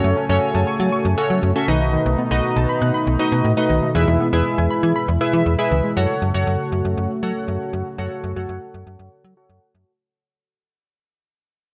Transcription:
Already playing: C#3 A3 C#4 F#4 A4 C#5 G#5
0.04 F#2 A3
0.17 C#4
0.29 F#2 C#4 F#4 A4 C#5
0.55 F#2 A5
0.67 C#6
0.80 F#3 A6
0.92 C#6
1.05 F#2
1.18 C#4 F#4 A4 C#5 F#5
1.30 F#3
1.43 F#2
1.55 A3 C#4 F#4 A4 E5
1.68 B1 B2 D#3 D#4 F#4 B4 D#5
1.81 A3
1.93 D#3
2.06 B1 A3
2.18 B3
2.31 B1 D#4 F#4 B4 D#5
2.56 B1 A5
2.69 B5
2.82 B2 F#6
2.94 B5
3.07 B1
3.19 D#4 F#4 B4 D#5
3.32 B2
3.44 A2
3.57 A3 D#4 F#4 B4 D#5
3.70 B1 D#3
3.82 A3
3.95 E2 E3 G#3 E4 G#4 B4 E5
4.08 E2 G#3
4.20 B3
4.33 E2 E4 G#4 B4 E5
4.58 E2 G#5
4.71 B5
4.83 E3 G#6
4.96 B5
5.08 E2
5.21 E4 G#4 B4 E5
5.34 E3
5.46 E2
5.59 G#3 E4 G#4 B4 E5
5.71 C#2 E3
5.84 G#3
5.96 F#2 C#3 A3 F#4 A4 C#5 F#5
6.22 F#2
6.34 F#2 F#4 A4 C#5 F#5
6.47 F#2
6.72 F#2
6.85 F#2
6.97 F#2
7.23 F#3 F#4 A4 C#5 F#5
7.48 F#2
7.73 F#2
7.98 F#2 F#4 A4 C#5 F#5
8.24 F#2
8.36 F#2 F#4 A4 C#5 F#5
8.49 F#2
8.74 F#2
8.87 F#2
8.99 F#2
9.24 F#3
9.37 F#4 A4 C#5 F#5
9.50 F#2
9.75 F#2

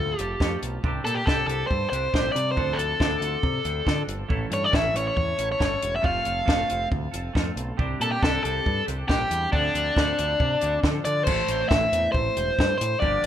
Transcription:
Already playing: C4 F4 A4
0.00 D2
0.19 F1 C4 F4 G4 A4, closed hi-hat
0.40 F2 A3 C4 F4 A4, kick, snare
0.63 B1, closed hi-hat
0.83 C2 C3 G3 C4 D4 G4, kick
1.05 A#2 C4 D4 G4 A4, closed hi-hat
1.14 G4
1.26 C2 C3 G3 C4 D4 G4 A4, kick, snare
1.47 C2 C4 D4 G4 A4, closed hi-hat
1.67 G2 C5, kick
1.90 C2 C4 D4 G4 C5, closed hi-hat
2.13 A#1 G3 C4 D4 G4, kick, snare
2.32 C3 D5
2.36 closed hi-hat
2.52 D3 C5
2.56 D2 F3 C4 D4 A4, kick
2.73 A4
2.77 D2 C4 D4 A4, closed hi-hat
2.99 D2 D3 F3 C4 D4 A4, kick, snare
3.20 D2 C4 D4 A4, closed hi-hat
3.43 C3, kick
3.63 D2 C4 D4 A4, closed hi-hat
3.85 D3 F3 C4 D4 A4, kick, snare
4.08 G1, closed hi-hat
4.28 A1 A2 E3 A3 C#4 E4 A4, kick
4.50 G2 A3 C#4 E4 A4 C#5, closed hi-hat
4.64 D5
4.71 A1 A2 E3 A3 C#4 E4 A4, kick, snare
4.75 E5
4.93 A1 A3 C#4 E4 A4, closed hi-hat
4.97 C#5
5.07 C#5
5.17 E2 C#5, kick
5.37 A1 A3 C#4 E4 A4, closed hi-hat
5.52 C#5
5.58 G1 A3 C#4 E4 A4, kick, snare
5.65 C#5
5.82 E1, closed hi-hat
5.96 E5
6.01 F1 F3 A3 C4 F4 A4, kick
6.06 F5
6.23 F1 C4 F4 A4, closed hi-hat
6.45 F1 F3 A3 C4 F4 A4, kick, snare
6.67 F1 C4 F4 A4, closed hi-hat
6.92 D2, kick
7.12 F1 C4 F4 A4, closed hi-hat
7.33 F2 A3 C4 F4 A4, kick, snare
7.56 B1, closed hi-hat
7.77 C2 C3 G3 C4 D4 G4, kick
8.00 A#2 C4 D4 G4 A4, closed hi-hat
8.12 G4
8.21 C2 C3 G3 C4 D4 G4 A4, kick, snare
8.42 C2 C4 D4 G4 A4, closed hi-hat
8.66 G2, kick
8.86 C2 C4 D4 G4, closed hi-hat
9.07 A#1 G3 C4 D4 G4, kick, snare
9.31 E2, closed hi-hat
9.51 D2 D3 F3 C4 D4 A4, kick
9.74 D2 C4 D4 A4, closed hi-hat
9.95 D2 D3 F3 C4 D4 A4, kick, snare
10.17 D2 C4 D4 A4, closed hi-hat
10.40 C3, kick
10.60 D2 C4 D4 A4, closed hi-hat
10.81 D3 F3 C4 D4 A4, kick, snare
11.05 D3 D5, closed hi-hat
11.24 A1 A2 E3 A3 C4 E4 A4 C5, kick, crash
11.48 A1, closed hi-hat
11.69 A1 E5, kick, snare
11.92 E2, snare, closed hi-hat
12.12 A1 C5, kick
12.37 E1, closed hi-hat
12.59 G2, kick, snare
12.78 A2 C5, closed hi-hat
13.00 G1 G2 D3 F3 A#3 D4 G4 D5, kick

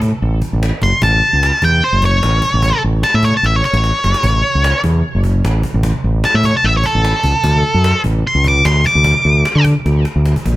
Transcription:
Already playing: A2
0.02 cajon bass
0.22 A1
0.42 cajon bass
0.53 A1
0.63 cajon slap
0.82 F#1 C6, cajon bass
1.02 A1 A5, cajon bass
1.33 C#2
1.43 cajon slap
1.62 E2 G5, cajon bass
1.84 C5
1.93 F#1
2.02 C#5, cajon bass
2.23 A1, cajon slap
2.42 cajon bass
2.54 A1
2.62 cajon bass
2.84 A1
3.03 A5, cajon slap
3.14 A2 E5
3.23 C#5, cajon bass
3.37 A5
3.43 A1 E5, cajon slap
3.56 C#5
3.64 C#5, cajon slap
3.73 A1, cajon slap
3.84 cajon slap
4.04 F#1, cajon slap
4.14 cajon slap
4.23 A1, cajon bass
4.55 C#2
4.64 cajon slap
4.84 E2, cajon bass
5.15 F#1
5.24 cajon bass
5.44 A1, cajon slap
5.63 cajon bass
5.74 A1
5.83 cajon bass
6.04 A1
6.24 A5, cajon slap
6.34 A2 E5
6.43 C#5, cajon bass
6.57 A5
6.64 A1 E5
6.77 C#5
6.84 A4, cajon bass
6.95 A1
7.05 cajon slap
7.24 C#2, cajon bass
7.44 D2, cajon bass
7.74 F#2
7.84 cajon slap
8.04 A1, cajon bass
8.27 C6
8.35 C#2
8.44 D6, cajon bass
8.65 D2 C6, cajon slap
8.84 D6, cajon bass
8.95 D2
9.04 cajon bass
9.25 D2
9.45 cajon slap
9.55 D3
9.65 cajon bass
9.86 D2, cajon slap
10.05 cajon slap
10.16 D2
10.26 cajon slap
10.36 cajon bass
10.46 A#1, cajon bass

